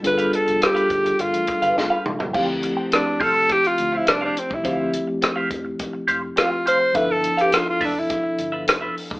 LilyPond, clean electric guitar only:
\new Staff \with { instrumentName = "Clean electric guitar" } { \time 4/4 \key d \dorian \tempo 4 = 104 r16 <g' b' f''>16 r8. <g' b' f''>16 r4 r16 <g' b' f''>16 r16 <g' b' f''>16 r8 | <g' c'' f''>16 r8 <g' c'' g''>16 r8 <g' c'' f''>16 r4 <g' c'' f''>16 r16 <g' c'' f''>16 r8 | <g' c'' f''>8 r8. <g' c'' f''>16 r4 <g' c'' f''>16 r16 <g' c'' f''>16 r16 <g' c'' f''>16 r16 | <f' b' e''>16 r8 <f' b' f''>16 r8 <f' b' e''>16 r4 <f' b' e''>16 r16 <f' b' e''>16 r8 | }